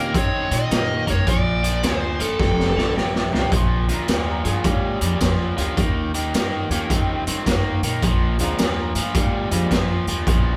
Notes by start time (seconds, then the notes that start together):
Already playing: C3 D#3 A#3 C#4 F4 G4 A#4
0.14 C#3 D#3 C4 C#5, kick, closed hi-hat
0.51 A#2 D#3 C4 D#5, closed hi-hat
0.69 A#2 D#3 A#3 C#4 F4 G4, snare, closed hi-hat
1.07 G#2 D#3 A#3 C#5, kick, snare, closed hi-hat
1.27 A#1 A#2 F3 D5, kick, closed hi-hat
1.63 A#2 F3, closed hi-hat
1.82 D2 A#2 F3 C4 D4 F4 G#4, snare, closed hi-hat
1.97 C5
2.20 G1 A#2 F3 A4, closed hi-hat
2.39 F1 F2 C3, kick, snare
2.60 snare
2.76 A1 F2 D3, snare
2.96 A1 F2 C3, snare
3.15 snare
3.31 C2 F2 A#2 C3 C4 D4 F4 G4, snare
3.52 A#1 A#2 F3, kick, closed hi-hat
3.56 C6
3.89 D2 A#2 F3, closed hi-hat
3.94 A#5
4.08 D#2 A#2 F3, snare, closed hi-hat
4.13 G5
4.31 A#5
4.44 G2 A#2 F3 A#3 D4 F4 G#4, closed hi-hat
4.50 F5
4.64 G#2 A#2 G3, kick, closed hi-hat
4.69 C#5 F5
5.01 F2 A#2 G3, closed hi-hat
5.20 F2 A#2 F3, kick, snare, closed hi-hat
5.56 D2 A#2 F3 A#3 C#4 F4 G4, closed hi-hat
5.77 D#2 D#3 A#3, kick, closed hi-hat
6.14 D#3 A#3, closed hi-hat
6.33 G2 D#3 A#3, snare, closed hi-hat
6.69 D#2 D#3 A#3 C#4 F4 G4, closed hi-hat
6.90 D#2 D#3 C4, kick, closed hi-hat
7.26 G2 D#3 C4, closed hi-hat
7.46 G2 D#3 A#3, kick, snare, closed hi-hat
7.82 A#2 D#3 A#3, closed hi-hat
8.02 A#1 A#2 F3, kick, closed hi-hat
8.07 C6
8.38 D2 A#2 F3 G#3 C4 D4 F4, closed hi-hat
8.44 A#5
8.58 D#2 A#2 F3, snare, closed hi-hat
8.63 G5
8.82 A#5
8.95 G2 A#2 F3, closed hi-hat
9.00 F5
9.14 G#2 A#2 G3, kick, closed hi-hat
9.19 F5
9.51 F2 A#2 G3 G#3 C4 D4 F4, closed hi-hat
9.71 F2 A#2 F3, kick, snare, closed hi-hat
10.07 D#2 A#2 F3, closed hi-hat
10.26 A#1 A#2 F3 G3 B3 C#4 E4, kick, closed hi-hat